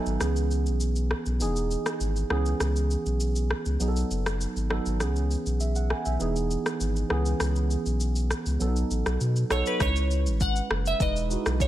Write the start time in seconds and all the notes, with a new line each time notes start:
Already playing: F#3 B3 D#4 A4 D#5 E5 F#5 G#5
0.06 G#1, shaker
0.20 C#2 E3 B3 C#4 G#4, cross-stick, shaker
0.36 shaker
0.51 shaker
0.66 B1, shaker
0.80 shaker
0.96 shaker
1.11 cross-stick
1.26 B1, shaker
1.40 E1 E3 B3 D#4 G#4, shaker
1.56 shaker
1.71 shaker
1.86 cross-stick, shaker
2.00 G#1, shaker
2.16 shaker
2.30 C#2 E3 B3 C#4 G#4, cross-stick
2.46 shaker
2.60 C#2, cross-stick, shaker
2.76 shaker
2.91 shaker
3.06 B1, shaker
3.20 shaker
3.36 shaker
3.51 cross-stick
3.65 C#2, shaker
3.79 B1 F#3 B3 D#4 G#4, shaker
3.88 A4
3.96 shaker
4.11 F#1, shaker
4.26 cross-stick, shaker
4.41 shaker
4.56 G#1, shaker
4.69 F#3 B3 D#4 A4, cross-stick
4.86 G#1, shaker
4.99 C#2 E3 B3 C#4 G#4, cross-stick, shaker
5.16 shaker
5.31 shaker
5.46 B1, shaker
5.60 E5, shaker
5.75 F#5, shaker
5.90 G#5, cross-stick
6.05 B1 E5, shaker
6.19 E1 E3 B3 D#4 G#4, shaker
6.36 shaker
6.51 shaker
6.66 cross-stick, shaker
6.80 G#1, shaker
6.96 shaker
7.09 C#2 E3 B3 C#4 G#4, cross-stick
7.25 shaker
7.40 C#2, cross-stick, shaker
7.56 shaker
7.70 shaker
7.86 B1, shaker
8.00 shaker
8.15 shaker
8.31 cross-stick, shaker
8.46 C#2, shaker
8.59 B1 F#3 B3 C#4 A4, shaker
8.67 D#4
8.76 shaker
8.91 A1, shaker
9.06 B1, cross-stick, shaker
9.21 B2, shaker
9.36 shaker
9.49 B1 F#3 B3 D#4 A4 C#5, cross-stick, shaker
9.66 B4, shaker
9.79 C#2 G#3 C#4 D#4 B4 C#5, kick, cross-stick, shaker
9.87 E4
9.96 shaker
10.11 shaker
10.26 G#1, shaker
10.40 F#5, kick, shaker
10.56 shaker
10.70 F#1, cross-stick
10.86 E5, shaker
10.99 E1 G#3 D#4 E4 B4 D#5, kick, shaker
11.16 shaker
11.29 G#3 D#4 E4 F#4, shaker
11.46 B1, cross-stick, shaker
11.60 C#5, kick, shaker